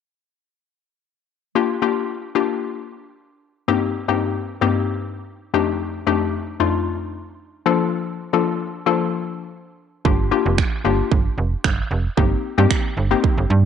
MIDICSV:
0, 0, Header, 1, 4, 480
1, 0, Start_track
1, 0, Tempo, 530973
1, 1407, Time_signature, 4, 2, 24, 8
1, 12342, End_track
2, 0, Start_track
2, 0, Title_t, "Synth pluck"
2, 0, Program_c, 0, 84
2, 1404, Note_on_c, 0, 58, 83
2, 1406, Note_on_c, 0, 62, 77
2, 1408, Note_on_c, 0, 65, 78
2, 1409, Note_on_c, 0, 67, 88
2, 1544, Note_off_c, 0, 58, 0
2, 1545, Note_off_c, 0, 62, 0
2, 1546, Note_off_c, 0, 65, 0
2, 1547, Note_off_c, 0, 67, 0
2, 1645, Note_on_c, 0, 58, 78
2, 1646, Note_on_c, 0, 62, 73
2, 1647, Note_on_c, 0, 65, 74
2, 1649, Note_on_c, 0, 67, 88
2, 1912, Note_off_c, 0, 58, 0
2, 1913, Note_off_c, 0, 62, 0
2, 1913, Note_off_c, 0, 65, 0
2, 1914, Note_off_c, 0, 67, 0
2, 2125, Note_on_c, 0, 58, 82
2, 2127, Note_on_c, 0, 62, 77
2, 2128, Note_on_c, 0, 65, 75
2, 2130, Note_on_c, 0, 67, 91
2, 2659, Note_off_c, 0, 58, 0
2, 2660, Note_off_c, 0, 62, 0
2, 2660, Note_off_c, 0, 65, 0
2, 2661, Note_off_c, 0, 67, 0
2, 3327, Note_on_c, 0, 43, 83
2, 3327, Note_on_c, 0, 58, 78
2, 3328, Note_on_c, 0, 60, 73
2, 3330, Note_on_c, 0, 63, 77
2, 3330, Note_on_c, 0, 67, 94
2, 3528, Note_off_c, 0, 43, 0
2, 3528, Note_off_c, 0, 58, 0
2, 3528, Note_off_c, 0, 60, 0
2, 3529, Note_off_c, 0, 63, 0
2, 3529, Note_off_c, 0, 67, 0
2, 3690, Note_on_c, 0, 43, 78
2, 3692, Note_on_c, 0, 58, 75
2, 3693, Note_on_c, 0, 60, 71
2, 3694, Note_on_c, 0, 63, 72
2, 3696, Note_on_c, 0, 67, 89
2, 3956, Note_off_c, 0, 43, 0
2, 3956, Note_off_c, 0, 58, 0
2, 3957, Note_off_c, 0, 60, 0
2, 3957, Note_off_c, 0, 63, 0
2, 3958, Note_off_c, 0, 67, 0
2, 4171, Note_on_c, 0, 43, 86
2, 4172, Note_on_c, 0, 58, 81
2, 4174, Note_on_c, 0, 60, 81
2, 4175, Note_on_c, 0, 63, 81
2, 4176, Note_on_c, 0, 67, 95
2, 4699, Note_off_c, 0, 43, 0
2, 4700, Note_off_c, 0, 58, 0
2, 4701, Note_off_c, 0, 60, 0
2, 4701, Note_off_c, 0, 63, 0
2, 4702, Note_off_c, 0, 67, 0
2, 5005, Note_on_c, 0, 41, 87
2, 5005, Note_on_c, 0, 57, 78
2, 5007, Note_on_c, 0, 62, 83
2, 5008, Note_on_c, 0, 63, 79
2, 5009, Note_on_c, 0, 67, 95
2, 5395, Note_off_c, 0, 41, 0
2, 5396, Note_off_c, 0, 57, 0
2, 5396, Note_off_c, 0, 62, 0
2, 5397, Note_off_c, 0, 63, 0
2, 5397, Note_off_c, 0, 67, 0
2, 5484, Note_on_c, 0, 41, 83
2, 5485, Note_on_c, 0, 57, 79
2, 5486, Note_on_c, 0, 62, 75
2, 5487, Note_on_c, 0, 63, 71
2, 5489, Note_on_c, 0, 67, 91
2, 5752, Note_off_c, 0, 41, 0
2, 5752, Note_off_c, 0, 57, 0
2, 5753, Note_off_c, 0, 62, 0
2, 5753, Note_off_c, 0, 63, 0
2, 5754, Note_off_c, 0, 67, 0
2, 5965, Note_on_c, 0, 41, 85
2, 5966, Note_on_c, 0, 57, 75
2, 5967, Note_on_c, 0, 62, 78
2, 5968, Note_on_c, 0, 63, 76
2, 5969, Note_on_c, 0, 65, 90
2, 6499, Note_off_c, 0, 41, 0
2, 6499, Note_off_c, 0, 57, 0
2, 6500, Note_off_c, 0, 62, 0
2, 6500, Note_off_c, 0, 63, 0
2, 6501, Note_off_c, 0, 65, 0
2, 6922, Note_on_c, 0, 53, 90
2, 6923, Note_on_c, 0, 58, 78
2, 6925, Note_on_c, 0, 62, 84
2, 6926, Note_on_c, 0, 65, 80
2, 6927, Note_on_c, 0, 69, 93
2, 7404, Note_off_c, 0, 53, 0
2, 7405, Note_off_c, 0, 58, 0
2, 7406, Note_off_c, 0, 62, 0
2, 7406, Note_off_c, 0, 65, 0
2, 7407, Note_off_c, 0, 69, 0
2, 7532, Note_on_c, 0, 53, 79
2, 7533, Note_on_c, 0, 58, 76
2, 7534, Note_on_c, 0, 62, 72
2, 7534, Note_on_c, 0, 65, 76
2, 7536, Note_on_c, 0, 69, 88
2, 7796, Note_off_c, 0, 53, 0
2, 7797, Note_off_c, 0, 58, 0
2, 7797, Note_off_c, 0, 62, 0
2, 7798, Note_off_c, 0, 65, 0
2, 7798, Note_off_c, 0, 69, 0
2, 8011, Note_on_c, 0, 53, 86
2, 8012, Note_on_c, 0, 58, 81
2, 8013, Note_on_c, 0, 62, 81
2, 8015, Note_on_c, 0, 65, 77
2, 8016, Note_on_c, 0, 69, 93
2, 8539, Note_off_c, 0, 53, 0
2, 8540, Note_off_c, 0, 58, 0
2, 8540, Note_off_c, 0, 62, 0
2, 8541, Note_off_c, 0, 65, 0
2, 8542, Note_off_c, 0, 69, 0
2, 9084, Note_on_c, 0, 58, 82
2, 9086, Note_on_c, 0, 62, 76
2, 9087, Note_on_c, 0, 65, 76
2, 9089, Note_on_c, 0, 67, 94
2, 9224, Note_off_c, 0, 58, 0
2, 9225, Note_off_c, 0, 62, 0
2, 9225, Note_off_c, 0, 65, 0
2, 9227, Note_off_c, 0, 67, 0
2, 9323, Note_on_c, 0, 58, 83
2, 9325, Note_on_c, 0, 62, 75
2, 9326, Note_on_c, 0, 65, 71
2, 9327, Note_on_c, 0, 67, 94
2, 9591, Note_off_c, 0, 58, 0
2, 9592, Note_off_c, 0, 62, 0
2, 9593, Note_off_c, 0, 65, 0
2, 9593, Note_off_c, 0, 67, 0
2, 9804, Note_on_c, 0, 58, 83
2, 9806, Note_on_c, 0, 62, 75
2, 9807, Note_on_c, 0, 65, 75
2, 9808, Note_on_c, 0, 67, 91
2, 10338, Note_off_c, 0, 58, 0
2, 10339, Note_off_c, 0, 62, 0
2, 10340, Note_off_c, 0, 65, 0
2, 10341, Note_off_c, 0, 67, 0
2, 11004, Note_on_c, 0, 58, 86
2, 11005, Note_on_c, 0, 60, 78
2, 11007, Note_on_c, 0, 63, 76
2, 11008, Note_on_c, 0, 67, 93
2, 11206, Note_off_c, 0, 58, 0
2, 11207, Note_off_c, 0, 60, 0
2, 11208, Note_off_c, 0, 63, 0
2, 11208, Note_off_c, 0, 67, 0
2, 11370, Note_on_c, 0, 58, 80
2, 11372, Note_on_c, 0, 60, 76
2, 11373, Note_on_c, 0, 63, 72
2, 11374, Note_on_c, 0, 67, 94
2, 11635, Note_off_c, 0, 58, 0
2, 11636, Note_off_c, 0, 60, 0
2, 11637, Note_off_c, 0, 63, 0
2, 11637, Note_off_c, 0, 67, 0
2, 11850, Note_on_c, 0, 58, 90
2, 11852, Note_on_c, 0, 60, 80
2, 11853, Note_on_c, 0, 63, 77
2, 11855, Note_on_c, 0, 67, 94
2, 12342, Note_off_c, 0, 58, 0
2, 12342, Note_off_c, 0, 60, 0
2, 12342, Note_off_c, 0, 63, 0
2, 12342, Note_off_c, 0, 67, 0
2, 12342, End_track
3, 0, Start_track
3, 0, Title_t, "FM bass"
3, 0, Program_c, 1, 39
3, 9086, Note_on_c, 1, 31, 103
3, 9329, Note_off_c, 1, 31, 0
3, 9453, Note_on_c, 1, 29, 86
3, 9612, Note_off_c, 1, 29, 0
3, 9806, Note_on_c, 1, 31, 83
3, 9965, Note_off_c, 1, 31, 0
3, 10048, Note_on_c, 1, 31, 87
3, 10206, Note_off_c, 1, 31, 0
3, 10285, Note_on_c, 1, 29, 84
3, 10444, Note_off_c, 1, 29, 0
3, 10527, Note_on_c, 1, 31, 85
3, 10685, Note_off_c, 1, 31, 0
3, 10765, Note_on_c, 1, 29, 92
3, 10924, Note_off_c, 1, 29, 0
3, 11006, Note_on_c, 1, 31, 106
3, 11165, Note_off_c, 1, 31, 0
3, 11373, Note_on_c, 1, 43, 95
3, 11447, Note_off_c, 1, 43, 0
3, 11725, Note_on_c, 1, 31, 84
3, 11884, Note_off_c, 1, 31, 0
3, 12092, Note_on_c, 1, 31, 93
3, 12167, Note_off_c, 1, 31, 0
3, 12204, Note_on_c, 1, 43, 99
3, 12342, Note_off_c, 1, 43, 0
3, 12342, End_track
4, 0, Start_track
4, 0, Title_t, "Drums"
4, 9086, Note_on_c, 9, 36, 99
4, 9176, Note_off_c, 9, 36, 0
4, 9566, Note_on_c, 9, 36, 113
4, 9567, Note_on_c, 9, 26, 100
4, 9657, Note_off_c, 9, 26, 0
4, 9657, Note_off_c, 9, 36, 0
4, 10048, Note_on_c, 9, 36, 108
4, 10139, Note_off_c, 9, 36, 0
4, 10526, Note_on_c, 9, 26, 112
4, 10527, Note_on_c, 9, 36, 115
4, 10616, Note_off_c, 9, 26, 0
4, 10617, Note_off_c, 9, 36, 0
4, 11006, Note_on_c, 9, 36, 102
4, 11096, Note_off_c, 9, 36, 0
4, 11486, Note_on_c, 9, 26, 98
4, 11486, Note_on_c, 9, 36, 114
4, 11576, Note_off_c, 9, 26, 0
4, 11576, Note_off_c, 9, 36, 0
4, 11967, Note_on_c, 9, 36, 104
4, 12058, Note_off_c, 9, 36, 0
4, 12342, End_track
0, 0, End_of_file